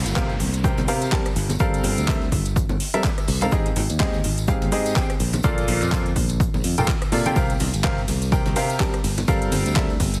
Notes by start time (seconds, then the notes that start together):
Already playing: downlifter
0.06 G1, closed hi-hat, tambourine
0.15 C3 C4 G4 A#4 F5, kick, snare, clap, shaker
0.29 snare, tambourine
0.40 C2, open hi-hat, high conga, shaker
0.53 closed hi-hat, tambourine
0.64 C3 C4 G4 A#4 G5, kick, tambourine, shaker
0.77 C2, closed hi-hat, tambourine, high conga
0.88 C3 C4 G4 A#4 F5, open hi-hat, shaker
1.01 snare, closed hi-hat, tambourine
1.12 G3 C4 G4 A#4 A5, kick, snare, clap, tambourine, high conga, shaker
1.25 cross-stick, closed hi-hat, tambourine
1.36 G1, open hi-hat, shaker
1.49 closed hi-hat, tambourine, high conga
1.60 G3 C4 A4 A#4 F5, kick, tambourine, shaker
1.74 closed hi-hat, tambourine
1.84 G1, open hi-hat, high conga, shaker
1.98 D2, closed hi-hat, tambourine
2.08 G3 C4 A4 A#4 E5, kick, snare, clap, shaker
2.22 tambourine
2.32 G1, kick, open hi-hat, high conga, shaker
2.45 closed hi-hat, tambourine
2.56 kick, tambourine, shaker
2.69 G1, tambourine, high conga
2.80 snare, open hi-hat, shaker
2.94 G3 C4 A4 A#4 E5, snare, closed hi-hat, tambourine
3.04 kick, snare, clap, tambourine, high conga, shaker
3.18 cross-stick, closed hi-hat, tambourine
3.28 C2, open hi-hat
3.41 G#2 C4 A4 A#4 F5, closed hi-hat, tambourine, high conga
3.52 G#1 G#2 C4 G4 G#4 D#5, kick, tambourine, shaker
3.66 closed hi-hat, tambourine
3.76 G#1, open hi-hat, high conga, shaker
3.90 D#2, closed hi-hat, tambourine
4.00 G#2 C4 G4 G#4 D#5, kick, snare, clap, tambourine, shaker
4.14 snare, tambourine
4.24 G#1, open hi-hat, high conga, shaker
4.38 closed hi-hat, tambourine
4.48 G#2 C4 G4 G#4 F5, kick, tambourine, shaker
4.62 G#1, closed hi-hat, tambourine, high conga
4.72 G#2 C4 G4 G#4 D#5, open hi-hat, shaker
4.86 snare, closed hi-hat, tambourine
4.96 C4 G4 G#4 G5, kick, snare, clap, tambourine, high conga, shaker
5.10 cross-stick, closed hi-hat, tambourine
5.20 A#1, open hi-hat, shaker
5.33 closed hi-hat, tambourine, high conga
5.43 A#1 A#2 A#3 F4 A4 D5, kick, tambourine, shaker
5.58 closed hi-hat, tambourine
5.68 A#1, open hi-hat, high conga, shaker
5.82 F2, clap, closed hi-hat, tambourine
5.92 A#2 A#3 F4 A4 C5, kick, snare, clap, shaker
6.06 closed hi-hat, tambourine
6.16 A#1, kick, open hi-hat, high conga, shaker
6.29 closed hi-hat, tambourine
6.40 kick, tambourine, shaker
6.54 A#1, tambourine, high conga
6.64 F2, snare, open hi-hat, shaker
6.77 F1 A#2 A#3 F4 A4 G5, snare, closed hi-hat, tambourine
6.88 kick, snare, clap, tambourine, high conga, shaker
7.01 cross-stick, closed hi-hat, tambourine
7.12 A#2 C3 A#3 F4 A4 D5, open hi-hat
7.25 C3 A#3 F4 A4 G5, closed hi-hat, tambourine, high conga
7.36 C2 C3 C4 G4 A#4 F5, kick, ride, tambourine, shaker
7.50 closed hi-hat, tambourine
7.59 C2, open hi-hat, ride, high conga, shaker
7.74 G1, closed hi-hat, tambourine
7.83 C3 C4 G4 A#4 F5, kick, snare, clap, ride, tambourine, shaker
7.98 snare, tambourine
8.08 C2, open hi-hat, ride, high conga, shaker
8.22 closed hi-hat, tambourine
8.32 C3 C4 G4 A#4 G5, kick, ride, tambourine, shaker
8.46 C2, closed hi-hat, tambourine, high conga
8.56 C3 C4 G4 A#4 F5, open hi-hat, ride, shaker
8.70 snare, closed hi-hat, tambourine
8.80 G3 C4 G4 A#4 A5, kick, snare, clap, ride, tambourine, high conga, shaker
8.93 cross-stick, closed hi-hat, tambourine
9.04 G1, open hi-hat, ride, shaker
9.18 closed hi-hat, tambourine, high conga
9.28 G1 G3 C4 A4 A#4 F5, kick, ride, tambourine, shaker
9.41 closed hi-hat, tambourine
9.52 G1, open hi-hat, ride, high conga, shaker
9.66 D2, closed hi-hat, tambourine
9.76 G3 C4 A4 A#4 E5, kick, snare, clap, ride, shaker
9.90 tambourine
10.00 G1, kick, open hi-hat, ride, high conga, shaker
10.14 closed hi-hat, tambourine